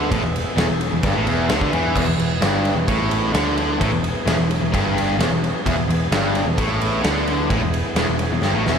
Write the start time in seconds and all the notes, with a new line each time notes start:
Already playing: D3 B3 G#4 E5
0.11 A1 A2, kick, ride
0.23 E1 E2
0.36 ride
0.56 E1 E2, snare, ride
0.68 E1 E2
0.81 ride
0.91 E1 E2
1.03 G1 G2, kick, ride
1.14 A1 A2
1.25 E1 E2, ride
1.48 D2 D3, snare, ride
1.59 D2 D3, kick
1.71 E2 E3, ride
1.94 E1 E2 B3 E4 G#4, kick, crash
2.06 E1 E2
2.18 E1 E2, ride
2.41 G1 G2, snare, ride
2.65 ride
2.75 E1 E2
2.87 A1 A2, kick, ride
3.11 ride
3.33 D2 D3, snare, ride
3.58 ride
3.80 A1 A2, kick, ride
3.91 E1 E2
4.04 ride
4.25 E1 E2, snare, ride
4.37 E1 E2
4.51 ride
4.61 E1 E2
4.72 G1 G2, kick, ride
4.98 ride
5.18 E1 E2, snare, ride
5.29 E1 E2
5.44 ride
5.65 E1 E2 B3 E4 G#4, kick, ride
5.77 E1 E2
5.88 E1 E2, ride
6.12 G1 G2, snare, ride
6.35 ride
6.46 E1 E2
6.58 A1 A2, kick, ride
6.81 ride
7.04 D2 D3, snare, ride
7.27 ride
7.50 A1 A2, kick, ride
7.61 E1 E2
7.74 ride
7.95 E1 E2, snare, ride
8.08 E1 E2
8.19 ride
8.31 E1 E2
8.42 G1 G2, snare
8.54 A1 A2
8.65 E1 E2, snare